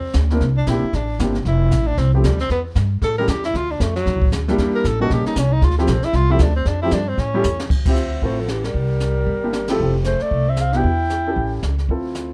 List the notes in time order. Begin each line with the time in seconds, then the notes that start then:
Already playing: E2 C4
0.13 D2, kick, snare, hi-hat pedal
0.30 A#3 C4 D4 E4 A#4, snare
0.40 C2, brush sweep, kick, snare
0.57 D4
0.66 A#1 A#3 C4 D4 E4 G4, kick, snare, hi-hat pedal
0.83 muted upright bass stroke
0.93 A1 D4, brush sweep, kick, snare
1.19 G1 A#3 C4 D4 E4 G4, kick, snare, hi-hat pedal
1.35 snare
1.45 F1 E4, brush sweep, kick, snare
1.71 A1, kick, snare, hi-hat pedal
1.87 D4
1.97 C2 C4, brush sweep, kick, snare
2.14 E3 F3 A3 C4 E4 G4
2.24 D2 G3, kick, snare, hi-hat pedal
2.39 C4, snare
2.49 E2 B3, brush sweep, kick, snare
2.75 G2, kick, snare, hi-hat pedal
3.02 A2 A4, brush sweep, kick, snare
3.18 G3 A3 C#4 E4 G4 A#4
3.27 E2 G4, kick, snare, hi-hat pedal
3.44 E4, snare
3.54 D2 F4, brush sweep, kick, snare
3.71 D4
3.80 F2 A3, kick, snare, hi-hat pedal
3.96 F#3, snare
4.06 D#2, brush sweep, kick, snare
4.15 C2
4.22 A1, kick
4.32 D2, snare, hi-hat pedal
4.48 G3 A#3 D4 E4 G4, snare
4.58 E2, brush sweep, kick, snare
4.75 A#4
4.84 A1 A4, kick, snare, hi-hat pedal
5.00 G3 A#3 C#4 D#4 F#4 A4
5.10 A#1 G4, brush sweep, kick, snare
5.26 D#4, muted upright bass stroke, snare
5.36 C2 C#4, kick, snare, hi-hat pedal
5.53 D#4
5.62 D2 F4, brush sweep, kick, snare
5.71 snare
5.78 F3 A3 C4 E4 G4, snare
5.87 A#1 C4, kick, snare, hi-hat pedal
6.02 E4, muted upright bass stroke, snare
6.13 C2 F4, brush sweep, kick, snare
6.30 F3 A3 C4 E4 G4
6.39 D2, kick, snare, hi-hat pedal
6.43 D4
6.56 C4
6.65 F2 D4, brush sweep, kick, snare
6.82 F3 A3 C4 E4 G4
6.91 G2 D4, kick, snare, hi-hat pedal
7.08 C4
7.17 A2 C#4, brush sweep, kick, snare
7.34 G3 A3 C#4 E4 G4
7.43 E2, hi-hat pedal
7.60 snare
7.70 D2, brush sweep, kick, crash
7.86 C4 E4 F4 G4 E5, kick, ride
7.96 hi-hat pedal
8.22 A1 A3 C4 E4 F4 A4 C5, brush sweep, kick
8.40 F3 A4
8.48 E3 G4, snare, hi-hat pedal
8.64 G3 A#4, snare
8.74 C2, brush sweep, kick
9.00 snare, hi-hat pedal
9.26 G1, brush sweep, kick
9.43 A#3 D4 E4 G4
9.53 snare, hi-hat pedal
9.67 F3 A3 C4 E4 G4 A4, snare, ride
9.79 F1 A3 C4 E4 G4, brush sweep
10.04 A3 C5, snare, hi-hat pedal
10.20 A3 D5, snare
10.31 C2, brush sweep, kick
10.48 C4 E5
10.56 C4, snare, hi-hat pedal
10.61 F5
10.73 B3 D4 E4 F#4 G4, snare
10.77 G5
10.83 E2, brush sweep, kick
11.10 snare, hi-hat pedal
11.27 C#4 E4 G4 A4
11.36 A1, brush sweep, kick
11.62 C#2, snare, hi-hat pedal
11.78 snare
11.89 D2 C4 E4 F4 A4, brush sweep, kick
12.15 snare, hi-hat pedal